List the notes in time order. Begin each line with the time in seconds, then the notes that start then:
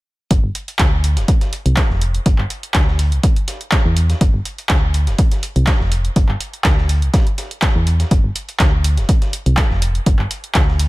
0.31 G1, kick, closed hi-hat
0.44 G1
0.55 closed hi-hat
0.68 closed hi-hat
0.79 D2, kick, snare, clap, closed hi-hat
1.04 closed hi-hat
1.17 F1, snare, closed hi-hat
1.28 kick, closed hi-hat
1.41 snare, closed hi-hat
1.53 closed hi-hat
1.66 C2, closed hi-hat
1.77 kick, snare, clap, closed hi-hat
1.90 F1, snare
2.01 closed hi-hat
2.15 closed hi-hat
2.26 G1, kick, closed hi-hat
2.38 G1, clap
2.50 closed hi-hat
2.63 closed hi-hat
2.74 D2, kick, snare, clap, closed hi-hat
2.88 snare
2.99 closed hi-hat, open hi-hat
3.12 C2, closed hi-hat
3.23 kick, closed hi-hat
3.36 closed hi-hat
3.48 snare, closed hi-hat
3.61 closed hi-hat
3.72 kick, snare, clap, closed hi-hat
3.85 E2
3.97 closed hi-hat
4.10 snare, closed hi-hat
4.21 G1, kick, closed hi-hat
4.34 G1
4.45 closed hi-hat
4.58 closed hi-hat
4.69 D2, kick, snare, clap, closed hi-hat
4.94 closed hi-hat
5.07 F1, snare, closed hi-hat
5.18 kick, closed hi-hat
5.32 snare, closed hi-hat
5.43 closed hi-hat
5.56 C2, closed hi-hat
5.67 kick, snare, clap, closed hi-hat
5.80 F1, snare
5.92 closed hi-hat
6.05 closed hi-hat
6.16 G1, kick, closed hi-hat
6.29 G1, clap
6.40 closed hi-hat
6.54 closed hi-hat
6.64 D2, kick, snare, clap, closed hi-hat
6.78 snare
6.89 closed hi-hat, open hi-hat
7.02 C2, closed hi-hat
7.14 kick, snare, closed hi-hat
7.27 closed hi-hat
7.38 snare, closed hi-hat
7.51 closed hi-hat
7.62 kick, snare, clap, closed hi-hat
7.75 E2
7.87 closed hi-hat
8.00 snare, closed hi-hat
8.11 G1, kick, closed hi-hat
8.24 G1
8.35 closed hi-hat, open hi-hat
8.49 closed hi-hat
8.60 D2, kick, snare, clap, closed hi-hat
8.84 closed hi-hat, open hi-hat
8.97 F1, snare, closed hi-hat
9.09 kick, closed hi-hat
9.22 snare, closed hi-hat
9.33 closed hi-hat, open hi-hat
9.46 C2, closed hi-hat
9.57 kick, snare, clap, closed hi-hat
9.71 F1, snare
9.82 closed hi-hat, open hi-hat
9.95 closed hi-hat
10.06 G1, kick, closed hi-hat
10.19 G1, clap
10.31 closed hi-hat, open hi-hat
10.44 closed hi-hat
10.55 D2, kick, snare, clap, closed hi-hat
10.68 snare
10.79 open hi-hat